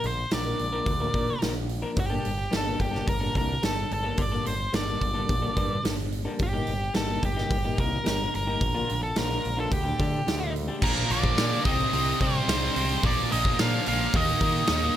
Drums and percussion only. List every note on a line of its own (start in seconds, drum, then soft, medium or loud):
0.03 open hi-hat soft
0.31 snare loud
0.31 open hi-hat medium
0.59 open hi-hat soft
0.86 kick loud
0.86 open hi-hat medium
1.14 kick medium
1.14 open hi-hat soft
1.42 snare medium
1.42 open hi-hat medium
1.69 open hi-hat soft
1.96 kick medium
1.96 open hi-hat medium
2.25 open hi-hat soft
2.52 snare loud
2.52 open hi-hat medium
2.80 kick medium
2.80 open hi-hat soft
2.95 snare soft
3.08 kick loud
3.08 open hi-hat medium
3.35 kick medium
3.35 open hi-hat soft
3.63 snare loud
3.63 open hi-hat medium
3.91 open hi-hat soft
4.17 kick medium
4.17 open hi-hat medium
4.46 open hi-hat medium
4.73 snare loud
4.73 open hi-hat medium
5.01 kick medium
5.01 open hi-hat soft
5.29 kick loud
5.29 open hi-hat medium
5.57 kick medium
5.57 open hi-hat soft
5.85 snare loud
5.85 open hi-hat medium
6.12 open hi-hat soft
6.39 kick medium
6.39 open hi-hat medium
6.67 open hi-hat soft
6.94 snare medium
6.94 open hi-hat medium
7.23 kick medium
7.23 open hi-hat soft
7.38 snare soft
7.51 kick loud
7.51 open hi-hat medium
7.78 kick medium
7.78 open hi-hat soft
8.06 snare loud
8.06 open hi-hat medium
8.35 open hi-hat soft
8.61 kick medium
8.61 open hi-hat medium
8.89 open hi-hat medium
9.16 snare loud
9.16 open hi-hat medium
9.45 open hi-hat soft
9.72 kick loud
9.72 open hi-hat medium
10.00 kick medium
10.00 open hi-hat soft
10.28 snare loud
10.28 open hi-hat medium
10.56 open hi-hat soft
10.82 kick loud
10.82 crash loud
11.10 open hi-hat medium
11.24 kick medium
11.37 snare loud
11.37 open hi-hat medium
11.65 kick loud
11.65 open hi-hat medium
11.93 open hi-hat medium
12.20 kick medium
12.20 open hi-hat medium
12.49 snare loud
12.49 open hi-hat medium
12.76 open hi-hat medium
13.03 kick loud
13.03 open hi-hat medium
13.32 open hi-hat medium
13.45 kick medium
13.59 snare loud
13.59 open hi-hat medium
13.86 open hi-hat medium
14.14 kick loud
14.14 open hi-hat medium
14.40 kick medium
14.40 open hi-hat medium
14.67 snare loud
14.67 open hi-hat medium